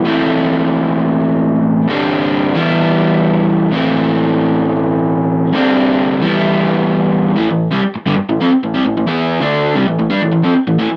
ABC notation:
X:1
M:4/4
L:1/16
Q:1/4=131
K:Am
V:1 name="Overdriven electric guitar" clef=bass
[A,,E,A,CE]16 | [G,,D,G,CD]6 [E,G,B,E]8- [E,G,B,E]2 | [A,,E,A,CE]16 | [G,,D,G,CD]6 [E,G,B,E]8- [E,G,B,E]2 |
[A,,E,] [A,,E,]2 [C,G,] z2 [G,,D,] z [A,,E,] [F,C] z [A,,E,] [C,G,] [A,,E,] [A,,E,] [E,B,E]- | [E,B,E]2 [D,A,D]3 [C,G,] [A,,E,] [A,,E,] [G,D] [A,,E,] [A,,E,] [F,C] z [A,,E,] [A,,E,] z |]